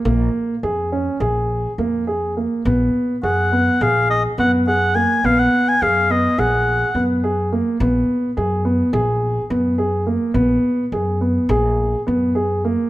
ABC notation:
X:1
M:9/8
L:1/16
Q:3/8=70
K:Cblyd
V:1 name="Oboe"
z16 z2 | z4 ^f4 =f2 e2 ^f2 f2 a2 | f ^f2 a =f2 e2 ^f4 z6 | z16 z2 |
z16 z2 |]
V:2 name="Grand piano"
B,4 A2 D2 A4 B,2 A2 B,2 | =B,4 A2 B,2 A4 B,2 A2 _B,2 | =B,4 A2 B,2 A4 B,2 A2 _B,2 | =B,4 A2 B,2 A4 B,2 A2 _B,2 |
=B,4 A2 B,2 A4 B,2 A2 _B,2 |]
V:3 name="Upright bass" clef=bass
B,,,2 z2 F,,4 B,,,4 F,,6 | B,,,2 z2 ^F,,4 B,,,4 F,,6 | B,,,2 z2 ^F,,4 B,,,4 F,,6 | B,,,2 z2 ^F,,4 B,,,4 F,,6 |
B,,,2 z2 ^F,,4 B,,,4 F,,6 |]